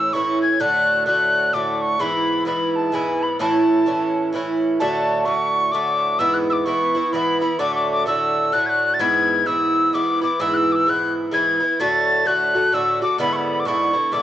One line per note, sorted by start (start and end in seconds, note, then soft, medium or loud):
0.00 0.12 A2 medium
0.00 0.13 E3 medium
0.00 0.14 C#4 medium
0.00 0.14 E4 medium
0.00 0.15 E6 loud
0.13 0.58 A2 medium
0.13 0.60 E3 medium
0.13 0.60 C#4 medium
0.13 0.60 E4 medium
0.13 0.41 C#6 medium
0.42 0.62 G#6 loud
0.60 1.05 A2 medium
0.60 1.06 D3 medium
0.60 1.06 A3 medium
0.60 1.07 F#4 medium
0.60 1.06 F#6 loud
1.06 1.52 A2 medium
1.06 1.53 D3 medium
1.06 1.54 A3 medium
1.06 1.54 F#4 medium
1.06 1.55 F#6 loud
1.53 1.99 A2 medium
1.53 1.99 D3 medium
1.53 2.00 A3 medium
1.53 2.01 F#4 medium
1.53 1.83 D6 loud
1.82 2.02 C#6 medium
1.99 2.44 G#2 medium
1.99 2.46 E3 medium
1.99 2.46 B3 medium
1.99 2.47 E4 medium
1.99 2.46 B5 loud
2.45 2.91 G#2 medium
2.45 2.92 E3 medium
2.45 2.93 B3 medium
2.45 2.93 E4 medium
2.45 2.77 B5 medium
2.76 2.95 A5 medium
2.92 3.39 G#2 medium
2.92 3.39 E3 medium
2.92 3.40 B3 medium
2.92 3.40 E4 medium
2.92 3.24 G#5 medium
3.23 3.40 B5 medium
3.39 3.85 A2 medium
3.39 3.85 E3 medium
3.39 3.86 C#4 medium
3.39 3.87 E4 medium
3.39 4.30 A5 loud
3.86 4.31 A2 medium
3.86 4.32 E3 medium
3.86 4.33 C#4 medium
3.86 4.34 E4 medium
4.33 4.79 A2 medium
4.33 4.80 E3 medium
4.33 4.80 C#4 medium
4.33 4.81 E4 medium
4.80 5.24 A2 medium
4.80 5.25 D3 medium
4.80 5.26 A3 medium
4.80 5.26 F#4 medium
4.80 5.27 A5 loud
5.25 5.72 A2 medium
5.25 5.73 D3 medium
5.25 5.74 A3 medium
5.25 5.74 F#4 medium
5.25 5.74 C#6 medium
5.72 6.19 A2 medium
5.72 6.19 D3 medium
5.72 6.20 A3 medium
5.72 6.21 F#4 medium
5.72 6.21 D6 loud
6.19 6.65 G#2 medium
6.19 6.65 E3 medium
6.19 6.66 B3 medium
6.19 6.67 E4 medium
6.19 6.35 E6 loud
6.34 6.36 F#6 medium
6.50 6.67 D6 medium
6.50 6.52 E6 loud
6.65 6.95 G#2 medium
6.65 6.95 E3 medium
6.65 6.95 B3 medium
6.65 6.93 E4 medium
6.65 7.14 C#6 medium
6.95 7.13 E3 soft
6.95 7.13 B3 soft
6.95 7.13 E4 soft
7.13 7.42 G#2 medium
7.13 7.42 E3 medium
7.13 7.41 B3 medium
7.13 7.40 E4 medium
7.13 7.41 B5 medium
7.41 7.59 E3 soft
7.41 7.59 B3 soft
7.41 7.60 E4 medium
7.41 7.61 B5 medium
7.59 8.05 A2 medium
7.59 8.06 D3 medium
7.59 8.06 A3 medium
7.59 8.07 F#4 medium
7.59 7.75 D6 loud
7.75 7.91 D6 medium
7.92 8.06 D6 loud
8.06 8.51 A2 medium
8.06 8.52 D3 medium
8.06 8.52 A3 medium
8.06 8.53 F#4 medium
8.06 8.55 E6 loud
8.52 8.99 A2 medium
8.52 9.00 D3 medium
8.52 9.00 A3 medium
8.52 9.00 F#4 medium
8.52 8.68 F#6 loud
8.66 8.85 F#6 loud
8.66 8.71 G#6 medium
8.85 8.96 F#6 loud
8.94 9.02 A6 medium
9.00 9.45 G#2 medium
9.00 9.46 E3 medium
9.00 9.46 B3 medium
9.00 9.47 E4 medium
9.00 9.48 G#6 loud
9.46 9.92 G#2 medium
9.46 9.93 E3 medium
9.46 9.93 B3 medium
9.46 9.94 E4 medium
9.46 9.96 E6 loud
9.93 10.21 G#2 medium
9.93 10.22 E3 medium
9.93 10.22 B3 medium
9.93 10.20 E4 medium
9.93 10.22 D6 medium
10.21 10.39 E3 soft
10.21 10.40 B3 soft
10.21 10.40 E4 medium
10.21 10.42 D6 medium
10.39 10.85 G#2 medium
10.39 10.87 E3 medium
10.39 10.87 B3 medium
10.39 10.87 E4 medium
10.39 10.55 E6 loud
10.54 10.73 E6 loud
10.54 10.58 F#6 medium
10.72 10.75 D6 medium
10.72 10.91 E6 loud
10.86 11.30 G#2 medium
10.86 11.31 E3 medium
10.86 11.32 B3 medium
10.86 11.33 E4 medium
10.86 11.14 F#6 medium
11.32 11.61 G#2 medium
11.32 11.61 E3 medium
11.32 11.61 B3 medium
11.32 11.59 E4 medium
11.32 11.82 G#6 loud
11.60 11.80 E3 soft
11.60 11.80 B3 soft
11.60 11.79 E4 soft
11.80 12.24 A2 medium
11.80 12.26 D3 medium
11.80 12.26 A3 medium
11.80 12.27 F#4 medium
11.80 12.29 A6 loud
12.26 12.55 A2 medium
12.26 12.55 D3 medium
12.26 12.55 A3 medium
12.26 12.54 F#4 medium
12.26 12.76 F#6 loud
12.55 12.72 D3 soft
12.55 12.73 A3 soft
12.55 12.73 F#4 soft
12.73 13.01 A2 medium
12.73 13.02 D3 medium
12.73 13.01 A3 medium
12.73 13.01 F#4 medium
12.73 13.02 E6 loud
13.02 13.18 D3 soft
13.02 13.19 A3 soft
13.02 13.20 F#4 medium
13.02 13.19 D6 medium
13.18 13.64 G#2 medium
13.18 13.65 D3 medium
13.18 13.66 B3 medium
13.18 13.68 E4 medium
13.18 13.34 B5 loud
13.33 13.50 B5 loud
13.33 13.37 C#6 medium
13.50 13.61 B5 loud
13.60 13.68 D6 medium
13.65 13.94 G#2 medium
13.65 13.95 D3 medium
13.65 13.94 B3 medium
13.65 13.92 E4 medium
13.65 14.15 C#6 loud
13.93 14.12 D3 soft
13.93 14.12 B3 soft
13.93 14.12 E4 soft
14.12 14.22 G#2 medium
14.12 14.22 D3 medium
14.12 14.22 B3 medium
14.12 14.22 E4 medium
14.12 14.22 D6 medium